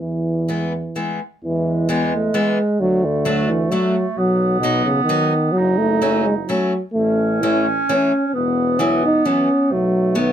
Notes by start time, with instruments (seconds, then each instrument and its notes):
0.00 tuba E2, euphonium E3
0.48 steel-string acoustic guitar E3 G#3 B3
0.96 steel-string acoustic guitar E3 G#3 B3
1.43 tuba E2, euphonium E3, clarinet G#3
1.89 steel-string acoustic guitar E3 G#3 B3, euphonium B3
2.16 euphonium A3
2.34 steel-string acoustic guitar E3 G#3 B3, euphonium G#3
2.80 tuba D2, euphonium F#3, clarinet A3
3.04 euphonium D3
3.25 steel-string acoustic guitar F#3 A3 D4
3.49 euphonium E3
3.70 euphonium F#3, steel-string acoustic guitar F#3 A3 D4
4.17 tuba B1, euphonium F#3, clarinet B3
4.60 euphonium B2, steel-string acoustic guitar F#3 B3
4.64 steel-string acoustic guitar D#4
4.85 euphonium C#3
5.04 euphonium D#3
5.09 steel-string acoustic guitar F#3 B3 D#4
5.52 tuba F#1, euphonium F#3
5.57 clarinet D#4
5.78 euphonium A3
6.02 steel-string acoustic guitar F#3 A3 C#4
6.25 euphonium G#3
6.47 euphonium F#3, steel-string acoustic guitar F#3 A3 C#4
6.93 tuba A1, euphonium A3, clarinet C#4
7.41 steel-string acoustic guitar E3 A3 C#4, euphonium E4
7.89 steel-string acoustic guitar E3 A3 C#4, euphonium C#4
8.27 euphonium C#4
8.34 tuba E1, clarinet B3, euphonium B3
8.79 steel-string acoustic guitar E3 F#3 B3, euphonium E4
9.05 euphonium D#4
9.25 steel-string acoustic guitar E3 F#3 B3, euphonium C#4
9.71 tuba B1, euphonium F#3, clarinet A3
10.15 steel-string acoustic guitar D#3 F#3 B3, euphonium B3